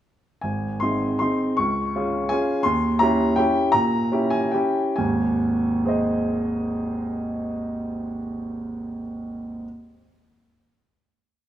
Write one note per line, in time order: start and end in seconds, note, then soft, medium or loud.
0.41 0.81 G#1 soft
0.41 0.81 G#5 medium
0.80 1.17 C4 soft
0.80 1.17 D#4 soft
0.80 1.17 G#4 soft
0.80 1.17 C6 medium
1.19 1.55 C4 soft
1.19 1.55 D#4 soft
1.19 1.56 G#4 soft
1.19 1.58 C6 medium
1.57 1.94 C#2 soft
1.57 2.30 C#6 medium
1.96 2.28 C#4 soft
1.96 2.28 F4 soft
1.96 2.28 G#4 soft
2.29 2.63 C#4 soft
2.29 2.63 F4 soft
2.29 2.63 G#4 soft
2.29 2.65 G#5 medium
2.63 3.00 D#2 medium
2.63 3.00 C6 medium
2.99 3.34 C#4 soft
2.99 3.35 E4 soft
2.99 3.35 G4 medium
2.99 3.37 A#5 medium
3.36 3.71 C#4 soft
3.36 3.72 E4 soft
3.36 3.72 G4 medium
3.36 3.74 G5 medium
3.72 4.11 A#2 medium
3.72 4.32 A#5 medium
4.12 4.50 C#4 soft
4.12 4.50 E4 soft
4.12 4.50 G4 soft
4.30 4.53 G#5 medium
4.52 4.94 C#4 soft
4.52 4.94 E4 soft
4.52 4.94 G4 soft
4.52 4.97 G5 medium
4.96 8.18 G#1 soft
4.96 8.18 D#2 soft
4.96 8.16 G#5 medium
5.85 9.00 G#4 soft
5.85 9.00 C5 soft
5.85 9.01 D#5 soft